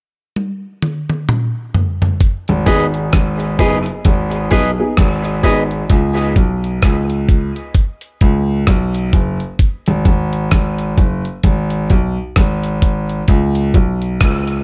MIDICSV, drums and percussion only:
0, 0, Header, 1, 2, 480
1, 0, Start_track
1, 0, Key_signature, 5, "minor"
1, 0, Tempo, 923219
1, 1149, Time_signature, 4, 2, 24, 8
1, 7610, End_track
2, 0, Start_track
2, 0, Title_t, "Drums"
2, 189, Note_on_c, 9, 48, 54
2, 241, Note_off_c, 9, 48, 0
2, 429, Note_on_c, 9, 47, 70
2, 481, Note_off_c, 9, 47, 0
2, 569, Note_on_c, 9, 47, 68
2, 621, Note_off_c, 9, 47, 0
2, 669, Note_on_c, 9, 45, 81
2, 721, Note_off_c, 9, 45, 0
2, 907, Note_on_c, 9, 43, 93
2, 959, Note_off_c, 9, 43, 0
2, 1049, Note_on_c, 9, 43, 82
2, 1101, Note_off_c, 9, 43, 0
2, 1146, Note_on_c, 9, 42, 86
2, 1147, Note_on_c, 9, 36, 110
2, 1198, Note_off_c, 9, 42, 0
2, 1199, Note_off_c, 9, 36, 0
2, 1289, Note_on_c, 9, 42, 51
2, 1341, Note_off_c, 9, 42, 0
2, 1386, Note_on_c, 9, 36, 97
2, 1387, Note_on_c, 9, 42, 67
2, 1438, Note_off_c, 9, 36, 0
2, 1439, Note_off_c, 9, 42, 0
2, 1528, Note_on_c, 9, 42, 37
2, 1580, Note_off_c, 9, 42, 0
2, 1625, Note_on_c, 9, 42, 81
2, 1627, Note_on_c, 9, 37, 108
2, 1628, Note_on_c, 9, 36, 109
2, 1677, Note_off_c, 9, 42, 0
2, 1679, Note_off_c, 9, 37, 0
2, 1680, Note_off_c, 9, 36, 0
2, 1767, Note_on_c, 9, 42, 48
2, 1819, Note_off_c, 9, 42, 0
2, 1867, Note_on_c, 9, 36, 100
2, 1867, Note_on_c, 9, 42, 67
2, 1919, Note_off_c, 9, 36, 0
2, 1919, Note_off_c, 9, 42, 0
2, 2007, Note_on_c, 9, 42, 37
2, 2059, Note_off_c, 9, 42, 0
2, 2104, Note_on_c, 9, 42, 103
2, 2106, Note_on_c, 9, 36, 100
2, 2156, Note_off_c, 9, 42, 0
2, 2158, Note_off_c, 9, 36, 0
2, 2243, Note_on_c, 9, 42, 53
2, 2295, Note_off_c, 9, 42, 0
2, 2343, Note_on_c, 9, 42, 63
2, 2348, Note_on_c, 9, 36, 99
2, 2395, Note_off_c, 9, 42, 0
2, 2400, Note_off_c, 9, 36, 0
2, 2585, Note_on_c, 9, 37, 93
2, 2586, Note_on_c, 9, 42, 73
2, 2589, Note_on_c, 9, 36, 104
2, 2637, Note_off_c, 9, 37, 0
2, 2638, Note_off_c, 9, 42, 0
2, 2641, Note_off_c, 9, 36, 0
2, 2727, Note_on_c, 9, 42, 56
2, 2779, Note_off_c, 9, 42, 0
2, 2827, Note_on_c, 9, 36, 84
2, 2827, Note_on_c, 9, 42, 60
2, 2879, Note_off_c, 9, 36, 0
2, 2879, Note_off_c, 9, 42, 0
2, 2969, Note_on_c, 9, 42, 34
2, 3021, Note_off_c, 9, 42, 0
2, 3066, Note_on_c, 9, 42, 91
2, 3067, Note_on_c, 9, 36, 109
2, 3118, Note_off_c, 9, 42, 0
2, 3119, Note_off_c, 9, 36, 0
2, 3209, Note_on_c, 9, 42, 53
2, 3261, Note_off_c, 9, 42, 0
2, 3307, Note_on_c, 9, 36, 97
2, 3307, Note_on_c, 9, 42, 68
2, 3359, Note_off_c, 9, 36, 0
2, 3359, Note_off_c, 9, 42, 0
2, 3452, Note_on_c, 9, 42, 36
2, 3504, Note_off_c, 9, 42, 0
2, 3547, Note_on_c, 9, 42, 91
2, 3549, Note_on_c, 9, 36, 109
2, 3549, Note_on_c, 9, 37, 112
2, 3599, Note_off_c, 9, 42, 0
2, 3601, Note_off_c, 9, 36, 0
2, 3601, Note_off_c, 9, 37, 0
2, 3690, Note_on_c, 9, 42, 49
2, 3742, Note_off_c, 9, 42, 0
2, 3788, Note_on_c, 9, 36, 98
2, 3789, Note_on_c, 9, 42, 68
2, 3840, Note_off_c, 9, 36, 0
2, 3841, Note_off_c, 9, 42, 0
2, 3931, Note_on_c, 9, 42, 38
2, 3983, Note_off_c, 9, 42, 0
2, 4027, Note_on_c, 9, 42, 91
2, 4028, Note_on_c, 9, 36, 103
2, 4079, Note_off_c, 9, 42, 0
2, 4080, Note_off_c, 9, 36, 0
2, 4165, Note_on_c, 9, 42, 53
2, 4217, Note_off_c, 9, 42, 0
2, 4268, Note_on_c, 9, 42, 61
2, 4270, Note_on_c, 9, 36, 96
2, 4320, Note_off_c, 9, 42, 0
2, 4322, Note_off_c, 9, 36, 0
2, 4508, Note_on_c, 9, 37, 97
2, 4509, Note_on_c, 9, 42, 70
2, 4511, Note_on_c, 9, 36, 99
2, 4560, Note_off_c, 9, 37, 0
2, 4561, Note_off_c, 9, 42, 0
2, 4563, Note_off_c, 9, 36, 0
2, 4650, Note_on_c, 9, 42, 57
2, 4702, Note_off_c, 9, 42, 0
2, 4747, Note_on_c, 9, 36, 83
2, 4748, Note_on_c, 9, 42, 59
2, 4799, Note_off_c, 9, 36, 0
2, 4800, Note_off_c, 9, 42, 0
2, 4887, Note_on_c, 9, 42, 34
2, 4939, Note_off_c, 9, 42, 0
2, 4987, Note_on_c, 9, 36, 104
2, 4987, Note_on_c, 9, 42, 88
2, 5039, Note_off_c, 9, 36, 0
2, 5039, Note_off_c, 9, 42, 0
2, 5128, Note_on_c, 9, 42, 56
2, 5180, Note_off_c, 9, 42, 0
2, 5227, Note_on_c, 9, 36, 94
2, 5228, Note_on_c, 9, 42, 65
2, 5279, Note_off_c, 9, 36, 0
2, 5280, Note_off_c, 9, 42, 0
2, 5370, Note_on_c, 9, 42, 38
2, 5422, Note_off_c, 9, 42, 0
2, 5465, Note_on_c, 9, 42, 85
2, 5467, Note_on_c, 9, 37, 110
2, 5468, Note_on_c, 9, 36, 112
2, 5517, Note_off_c, 9, 42, 0
2, 5519, Note_off_c, 9, 37, 0
2, 5520, Note_off_c, 9, 36, 0
2, 5607, Note_on_c, 9, 42, 46
2, 5659, Note_off_c, 9, 42, 0
2, 5707, Note_on_c, 9, 36, 101
2, 5707, Note_on_c, 9, 42, 60
2, 5759, Note_off_c, 9, 36, 0
2, 5759, Note_off_c, 9, 42, 0
2, 5849, Note_on_c, 9, 42, 39
2, 5901, Note_off_c, 9, 42, 0
2, 5945, Note_on_c, 9, 42, 103
2, 5946, Note_on_c, 9, 36, 104
2, 5997, Note_off_c, 9, 42, 0
2, 5998, Note_off_c, 9, 36, 0
2, 6085, Note_on_c, 9, 42, 52
2, 6137, Note_off_c, 9, 42, 0
2, 6186, Note_on_c, 9, 42, 63
2, 6188, Note_on_c, 9, 36, 90
2, 6238, Note_off_c, 9, 42, 0
2, 6240, Note_off_c, 9, 36, 0
2, 6426, Note_on_c, 9, 37, 97
2, 6428, Note_on_c, 9, 42, 69
2, 6430, Note_on_c, 9, 36, 98
2, 6478, Note_off_c, 9, 37, 0
2, 6480, Note_off_c, 9, 42, 0
2, 6482, Note_off_c, 9, 36, 0
2, 6569, Note_on_c, 9, 42, 55
2, 6621, Note_off_c, 9, 42, 0
2, 6666, Note_on_c, 9, 36, 77
2, 6667, Note_on_c, 9, 42, 62
2, 6718, Note_off_c, 9, 36, 0
2, 6719, Note_off_c, 9, 42, 0
2, 6808, Note_on_c, 9, 42, 32
2, 6860, Note_off_c, 9, 42, 0
2, 6903, Note_on_c, 9, 42, 84
2, 6906, Note_on_c, 9, 36, 106
2, 6955, Note_off_c, 9, 42, 0
2, 6958, Note_off_c, 9, 36, 0
2, 7045, Note_on_c, 9, 42, 56
2, 7097, Note_off_c, 9, 42, 0
2, 7144, Note_on_c, 9, 42, 66
2, 7145, Note_on_c, 9, 36, 96
2, 7196, Note_off_c, 9, 42, 0
2, 7197, Note_off_c, 9, 36, 0
2, 7288, Note_on_c, 9, 42, 38
2, 7340, Note_off_c, 9, 42, 0
2, 7385, Note_on_c, 9, 42, 83
2, 7387, Note_on_c, 9, 36, 114
2, 7387, Note_on_c, 9, 37, 107
2, 7437, Note_off_c, 9, 42, 0
2, 7438, Note_off_c, 9, 37, 0
2, 7439, Note_off_c, 9, 36, 0
2, 7525, Note_on_c, 9, 42, 46
2, 7577, Note_off_c, 9, 42, 0
2, 7610, End_track
0, 0, End_of_file